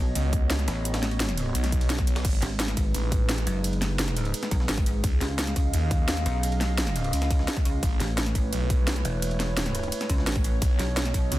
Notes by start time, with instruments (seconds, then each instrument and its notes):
Already playing: wobble bass B1, analog synth pad B3 F#4 C#5 D#5
0.15 detuned saw bass C#2, closed hi-hat, ride
0.33 kick, closed hi-hat
0.50 snare, closed hi-hat, ride
0.59 snare, closed hi-hat
0.68 wobble bass A1, snare, closed hi-hat, ride
0.85 closed hi-hat, ride
0.94 snare, closed hi-hat, ride
1.03 snare, closed hi-hat
1.11 ride
1.20 snare, closed hi-hat, ride
1.29 snare, closed hi-hat
1.38 closed hi-hat, ride
1.55 detuned saw bass B1, closed hi-hat, ride
1.64 snare, closed hi-hat, ride
1.72 kick, closed hi-hat
1.81 ride
1.90 snare, closed hi-hat, ride
1.99 kick, snare, closed hi-hat
2.07 detuned saw bass B1, closed hi-hat, ride
2.16 snare, ride
2.25 detuned saw bass G#1, analog synth pad G#3 D#4 G#4 B4, kick, closed hi-hat, ride, crash
2.42 wobble bass G#1, snare, closed hi-hat, ride
2.60 snare, closed hi-hat, ride
2.68 snare, closed hi-hat
2.77 wobble bass G#1, kick, closed hi-hat, ride
2.94 detuned saw bass A1, closed hi-hat, ride
3.12 kick, closed hi-hat, ride
3.29 snare, closed hi-hat, ride
3.38 snare, closed hi-hat
3.47 wobble bass F#1, closed hi-hat, ride
3.64 closed hi-hat, ride
3.73 ride
3.82 snare, closed hi-hat, ride
3.99 snare, closed hi-hat, ride
4.08 snare, closed hi-hat
4.17 closed hi-hat, ride
4.25 ride
4.34 closed hi-hat, ride
4.43 snare, closed hi-hat
4.51 wobble bass B1, kick, closed hi-hat, ride
4.60 snare
4.69 wobble bass G#1, snare, closed hi-hat, open hi-hat
4.78 kick, snare, closed hi-hat, ride
4.86 closed hi-hat, ride
5.04 detuned saw bass C#2, analog synth pad C#4 D#5 F5, kick, closed hi-hat, ride
5.21 wobble bass C#2, snare, closed hi-hat, ride
5.39 snare, closed hi-hat, ride
5.47 snare, closed hi-hat
5.56 wobble bass C#2, kick, closed hi-hat, ride
5.73 detuned saw bass D#2, closed hi-hat, ride
5.91 kick, closed hi-hat, ride
6.08 snare, closed hi-hat, ride
6.17 snare, closed hi-hat
6.26 wobble bass B1, closed hi-hat, ride
6.43 closed hi-hat, ride
6.52 ride
6.61 snare, closed hi-hat, ride
6.78 snare, closed hi-hat, ride
6.87 snare, closed hi-hat
6.96 closed hi-hat, ride
7.04 ride
7.13 wobble bass C#2, closed hi-hat, ride
7.22 snare, closed hi-hat
7.30 kick, closed hi-hat, ride
7.39 snare
7.48 snare, closed hi-hat, open hi-hat
7.57 kick, snare, closed hi-hat, ride
7.65 wobble bass C#2, closed hi-hat, ride
7.83 detuned saw bass A1, analog synth pad A3 E4 B4 C#5, kick, closed hi-hat, ride
8.00 wobble bass A1, snare, closed hi-hat, ride
8.18 snare, closed hi-hat, ride
8.26 snare, closed hi-hat
8.35 wobble bass A1, kick, closed hi-hat, ride
8.53 detuned saw bass B1, closed hi-hat, ride
8.70 kick, closed hi-hat, ride
8.87 snare, closed hi-hat, ride
8.96 snare, closed hi-hat
9.05 wobble bass E1, closed hi-hat, ride
9.22 closed hi-hat, ride
9.31 ride
9.40 snare, closed hi-hat, ride
9.57 snare, closed hi-hat, ride
9.66 snare, closed hi-hat
9.75 closed hi-hat, ride
9.83 ride
9.92 closed hi-hat, ride
10.01 snare, closed hi-hat
10.10 wobble bass C#2, kick, closed hi-hat, ride
10.18 snare
10.27 wobble bass A1, snare, closed hi-hat, open hi-hat
10.36 kick, snare, closed hi-hat, ride
10.44 closed hi-hat, ride
10.62 detuned saw bass B1, analog synth pad B3 F#4 D#5, kick, closed hi-hat, ride
10.79 wobble bass B1, snare, closed hi-hat, ride
10.97 snare, closed hi-hat, ride
11.06 snare, closed hi-hat
11.14 wobble bass B1, kick, closed hi-hat, ride
11.32 detuned saw bass C#2, closed hi-hat, ride